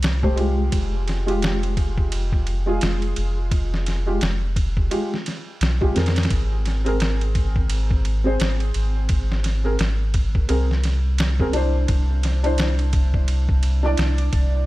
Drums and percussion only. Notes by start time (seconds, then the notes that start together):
0.03 snare, ride
0.23 kick
0.38 ride
0.72 kick, ride
1.08 snare, ride
1.28 ride
1.42 snare, ride
1.63 ride
1.77 kick, ride
1.98 kick
2.12 ride
2.32 kick
2.47 ride
2.81 snare, ride
3.02 ride
3.16 ride
3.51 kick, ride
3.74 snare
3.86 snare, ride
4.21 snare, ride
4.56 kick, ride
4.77 kick
4.91 ride
5.14 snare
5.26 snare, ride
5.61 snare, ride
5.81 kick
5.96 snare, ride
6.06 snare, ride
6.16 snare, ride
6.23 snare, ride
6.30 kick, ride
6.66 snare, ride
6.86 ride
7.00 snare, ride
7.21 ride
7.35 kick, ride
7.56 kick
7.70 ride
7.91 kick
8.05 ride
8.40 snare, ride
8.60 ride
8.74 ride
9.09 kick, ride
9.32 snare
9.44 snare, ride
9.79 snare, ride
10.14 kick, ride
10.35 kick
10.49 ride
10.71 snare
10.84 snare, ride
11.18 snare, ride
11.40 kick
11.53 ride
11.88 kick, ride
12.23 snare, ride
12.44 ride
12.58 snare, ride
12.79 ride
12.93 kick, ride
13.14 kick
13.28 ride
13.49 kick
13.63 ride
13.97 snare, ride
14.18 ride
14.33 kick, ride